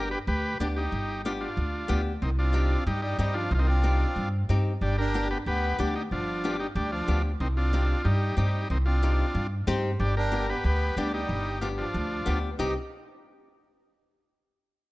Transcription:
Already playing: upright bass G1, nylon-string guitar B3 D4 G4
0.11 transistor combo organ G4 B4
0.27 upright bass D2, transistor combo organ G4 B4
0.60 upright bass D2, nylon-string guitar B3 D4 G4, transistor combo organ D4 G4
0.76 transistor combo organ D#4 G4
0.92 upright bass G1
1.25 nylon-string guitar B3 D4 G4, transistor combo organ D4 F4
1.41 transistor combo organ D4 F4
1.57 upright bass D2
1.88 upright bass D2, nylon-string guitar B3 D4 G4
2.22 upright bass C2, accordion D#3, transistor combo organ C4 D#4
2.39 accordion C4, transistor combo organ D4 F4
2.53 nylon-string guitar C4 D#4 G4
2.87 upright bass G2, accordion G3, transistor combo organ D#4 G4
3.02 accordion G3, transistor combo organ D#4 G4
3.18 upright bass G2, accordion G3, nylon-string guitar C4 D#4 G4, transistor combo organ D#4 G4
3.34 accordion F3, transistor combo organ D4 F4
3.51 upright bass C2, accordion D#3, transistor combo organ C4 D#4 F4
3.56 accordion G#3, transistor combo organ C4 D#4
3.60 accordion D#3
3.67 accordion C4, transistor combo organ D4 F4
3.83 nylon-string guitar C4 D#4 G4
4.16 upright bass G2
4.49 upright bass G2, nylon-string guitar C4 D#4 G4
4.81 upright bass G1, accordion G3, transistor combo organ D4 G4
4.98 accordion D4, transistor combo organ G4 A#4
5.14 nylon-string guitar B3 D4 G4
5.31 accordion B3, transistor combo organ G4 B4
5.46 upright bass D2, accordion B3, transistor combo organ G4 B4
5.79 upright bass D2, accordion G3, nylon-string guitar B3 D4 G4, transistor combo organ D4 G4
5.96 accordion G3, transistor combo organ D#4 G4
6.11 upright bass G1, accordion F3, transistor combo organ D4 F4
6.44 nylon-string guitar B3 D4 G4
6.60 accordion G3, transistor combo organ D#4 G4
6.75 upright bass D2, accordion G3, transistor combo organ D4 G4
6.92 accordion F3, transistor combo organ D4 F4
7.08 upright bass D2, nylon-string guitar B3 D4 G4
7.40 upright bass C2, accordion D#3, transistor combo organ C4 D#4
7.57 accordion C4, transistor combo organ D4 F4
7.73 nylon-string guitar C4 D#4 G4
8.04 upright bass G2, accordion G3, transistor combo organ D#4 G4
8.37 upright bass G2, accordion G3, nylon-string guitar C4 D#4 G4, transistor combo organ D#4 G4
8.70 upright bass C2, accordion D#3, transistor combo organ C4 D#4
8.86 accordion C4, transistor combo organ D4 F4
9.02 nylon-string guitar C4 D#4 G4
9.35 upright bass G2
9.67 upright bass G2, nylon-string guitar C4 D#4 G4 C5
10.00 upright bass G1, accordion G3, transistor combo organ D4 G4
10.17 accordion D4, transistor combo organ G4 A#4
10.32 nylon-string guitar B3 D4 G4
10.50 accordion B3, transistor combo organ G4 B4
10.64 upright bass D2, accordion B3, transistor combo organ G4 B4
10.97 upright bass D2, accordion G3, nylon-string guitar B3 D4 G4, transistor combo organ D4 G4
11.13 accordion G3, transistor combo organ D#4 G4
11.29 upright bass G1
11.61 accordion F3, nylon-string guitar B3 D4 G4, transistor combo organ D4 F4
11.78 accordion F3, transistor combo organ D4 F4
11.94 upright bass D2
12.26 upright bass D2, nylon-string guitar B3 D4 G4
12.58 upright bass C2, nylon-string guitar C4 D#4 G4, transistor combo organ D#4, accordion G4

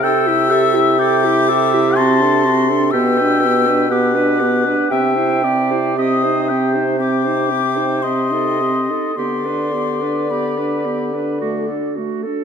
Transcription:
0.02 bassoon C3, french horn G4, clarinet A4, oboe G5, flute E6
0.27 french horn E4, clarinet G4
0.50 french horn G4, clarinet A4, oboe E5
0.74 french horn E4, clarinet G4
0.99 french horn G4, clarinet A4, oboe G5, flute D6
1.25 french horn E4, clarinet G4
1.49 french horn G4, clarinet A4, oboe E5
1.73 french horn E4, clarinet G4
1.96 french horn C4, clarinet F#4, oboe A5, flute C6
2.21 french horn D4, clarinet A4
2.45 french horn C4, clarinet F#4
2.69 french horn D4, clarinet A4
2.91 bassoon B2, french horn B3, clarinet G4, oboe G5, flute E6
3.18 french horn D4, clarinet B4
3.41 clarinet G4
3.45 french horn B3
3.67 french horn D4, clarinet B4
3.90 french horn B3, clarinet G4, oboe F#5, flute D6
4.15 french horn D4, clarinet B4
4.40 french horn B3, clarinet G4
4.64 french horn D4, clarinet B4
4.90 bassoon C3, french horn C4, clarinet G4, oboe E5, flute G5
5.16 french horn E4, clarinet C5
5.43 french horn C4, clarinet G4, oboe D5
5.71 french horn E4, clarinet C5
5.98 french horn C4, clarinet G4, oboe D#5, flute D#6
6.23 french horn D#4, clarinet C5
6.49 french horn C4, clarinet G4, oboe G5
6.74 french horn D#4, clarinet C5
6.98 french horn C4, clarinet G4, oboe G5, flute D6
7.24 french horn D#4, clarinet C5
7.50 french horn C4, clarinet G4
7.77 french horn D#4, clarinet C5
8.02 french horn C4, clarinet G4, oboe D#5, flute C6
8.32 french horn D#4, clarinet A4
8.60 french horn C4, clarinet G4
8.91 french horn D#4, clarinet A4
9.15 bassoon D3, french horn B3, clarinet G4, oboe D5, flute C6
9.45 french horn D4, clarinet B4
9.72 french horn B3, clarinet G4
10.01 french horn D4, clarinet B4
10.30 french horn B3, clarinet G4, flute B5
10.57 french horn D4, clarinet B4
10.85 french horn B3, clarinet G4
11.14 french horn D4, clarinet B4
11.41 french horn A3, clarinet F#4
11.68 french horn D4, clarinet A4
11.96 french horn A3, clarinet F#4
12.23 french horn D4, clarinet A4

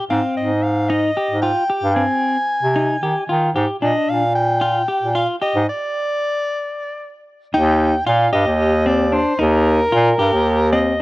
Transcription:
0.10 bass clarinet G#2, clean electric guitar C4, soprano saxophone F5
0.37 bass clarinet G#2, soprano saxophone D#5
0.63 soprano saxophone F5
0.89 clean electric guitar D#4, soprano saxophone D#5
1.17 clean electric guitar G4
1.30 bass clarinet G#2
1.42 clean electric guitar F4, soprano saxophone G5
1.70 clean electric guitar G4
1.83 bass clarinet G2
1.95 clean electric guitar C4, soprano saxophone G#5
2.63 bass clarinet C3
2.76 clean electric guitar D#4
3.02 bass clarinet D#3, clean electric guitar G4
3.29 bass clarinet D#3, clean electric guitar F4
3.55 bass clarinet G#2, clean electric guitar G4
3.82 bass clarinet A#2, clean electric guitar D4, soprano saxophone D#5
4.09 bass clarinet A#2, soprano saxophone F5
4.36 soprano saxophone G5
4.62 clean electric guitar F4
4.88 clean electric guitar G4
5.02 bass clarinet A#2
5.15 clean electric guitar F4, soprano saxophone F5
5.42 clean electric guitar G4, soprano saxophone D#5
5.55 bass clarinet G#2
5.69 soprano saxophone D5
7.54 bass clarinet D#2, clean electric guitar D#4, soprano saxophone G5
8.07 bass clarinet A#2, clean electric guitar F4, soprano saxophone F5
8.33 bass clarinet G2, clean electric guitar G4, soprano saxophone D#5
8.47 bass clarinet D#2
8.86 clean electric guitar C4, soprano saxophone D5
9.12 clean electric guitar D4, soprano saxophone C5
9.39 bass clarinet D#2, clean electric guitar D#4, soprano saxophone A#4
9.92 bass clarinet A#2, clean electric guitar F4
10.19 bass clarinet G2, clean electric guitar G4
10.33 bass clarinet D#2
10.72 clean electric guitar C4, soprano saxophone D#5

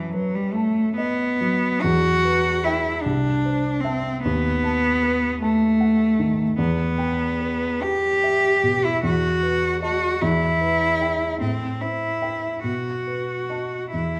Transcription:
Already playing: grand piano F#2 A5, cello E3
0.13 cello F#3, grand piano B4
0.35 cello G3
0.53 cello A3, grand piano A5
0.96 cello B3, grand piano D#5
1.41 grand piano F#3
1.81 grand piano E2, cello F#4
2.25 grand piano B4
2.64 cello E4, grand piano E5 G5
3.02 grand piano C2, cello D4
3.45 grand piano C5
3.81 cello C4, grand piano E5 A5
4.23 grand piano D#2, cello B3
4.64 grand piano A5
5.03 grand piano B4
5.41 cello A3, grand piano A5
5.81 grand piano F#5
6.19 grand piano D#3
6.58 grand piano E2, cello B3
6.98 grand piano G5
7.41 grand piano B4
7.82 cello G4, grand piano G5
8.24 grand piano E5
8.64 grand piano B2
8.85 cello E4
9.03 grand piano E2, cello F#4
9.43 grand piano B4
9.82 cello F#4, grand piano D#5 A5
10.21 grand piano E2, cello E4
10.61 grand piano B4
11.01 grand piano E5 G5
11.41 grand piano A2, cello C4
11.81 cello E4, grand piano C5
12.22 grand piano E5 G5
12.63 grand piano B2, cello F#4
13.07 grand piano B4
13.50 grand piano D#5 A5
13.93 grand piano E2, cello E4

